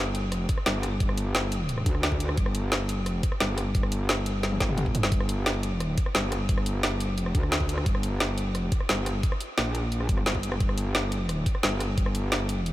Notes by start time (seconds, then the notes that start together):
Already playing: G1
0.15 closed hi-hat
0.23 F#1
0.32 cross-stick, closed hi-hat
0.49 kick, closed hi-hat
0.58 cross-stick
0.66 G1, snare, closed hi-hat
0.83 cross-stick, closed hi-hat
1.00 G1, kick, closed hi-hat
1.09 cross-stick
1.18 closed hi-hat
1.35 snare, closed hi-hat
1.52 closed hi-hat
1.69 closed hi-hat
1.78 cross-stick
1.86 D2, kick, closed hi-hat
1.95 cross-stick
2.03 snare, closed hi-hat
2.12 kick
2.20 closed hi-hat
2.29 cross-stick
2.37 G1, kick, closed hi-hat
2.46 cross-stick
2.55 closed hi-hat
2.72 snare, closed hi-hat
2.89 closed hi-hat
2.98 F#1
3.06 cross-stick, closed hi-hat
3.23 kick, closed hi-hat
3.32 cross-stick
3.40 G1, snare, closed hi-hat
3.58 cross-stick, closed hi-hat
3.75 G1, kick, closed hi-hat
3.83 cross-stick
3.92 closed hi-hat
4.09 snare, closed hi-hat
4.26 closed hi-hat
4.43 snare, closed hi-hat
4.52 high tom
4.60 kick, snare, closed hi-hat
4.69 mid tom
4.78 closed hi-hat, mid tom
4.86 kick
4.95 closed hi-hat, mid tom
5.03 snare
5.12 G1, kick, closed hi-hat
5.20 cross-stick
5.29 closed hi-hat
5.46 snare, closed hi-hat
5.63 closed hi-hat
5.80 cross-stick, closed hi-hat
5.98 kick, closed hi-hat
6.06 cross-stick
6.15 G1, snare, closed hi-hat
6.32 cross-stick, closed hi-hat
6.49 G1, kick, closed hi-hat
6.58 cross-stick
6.66 closed hi-hat
6.83 snare, closed hi-hat
7.00 closed hi-hat
7.09 F#1
7.18 closed hi-hat
7.26 cross-stick
7.35 D2, kick, closed hi-hat
7.43 cross-stick
7.52 snare, closed hi-hat
7.60 kick
7.69 closed hi-hat
7.78 cross-stick
7.86 G1, kick, closed hi-hat
7.95 cross-stick
8.03 closed hi-hat
8.20 snare, closed hi-hat
8.38 closed hi-hat
8.46 F#1
8.55 cross-stick, closed hi-hat
8.72 kick, closed hi-hat
8.80 cross-stick
8.89 G1, snare, closed hi-hat
9.06 cross-stick, closed hi-hat
9.23 kick, closed hi-hat
9.32 cross-stick
9.41 closed hi-hat
9.58 A#1, snare, closed hi-hat
9.75 closed hi-hat
9.92 closed hi-hat
10.00 cross-stick
10.09 G1, kick, closed hi-hat
10.18 cross-stick
10.26 snare, closed hi-hat
10.35 kick
10.43 closed hi-hat
10.52 cross-stick
10.60 G1, kick, closed hi-hat
10.69 cross-stick
10.78 closed hi-hat
10.95 snare, closed hi-hat
11.12 closed hi-hat
11.29 cross-stick, closed hi-hat
11.46 kick, closed hi-hat
11.55 cross-stick
11.63 G1, snare, closed hi-hat
11.80 cross-stick, closed hi-hat
11.98 G1, kick, closed hi-hat
12.06 cross-stick
12.15 closed hi-hat
12.32 snare, closed hi-hat
12.49 closed hi-hat
12.66 closed hi-hat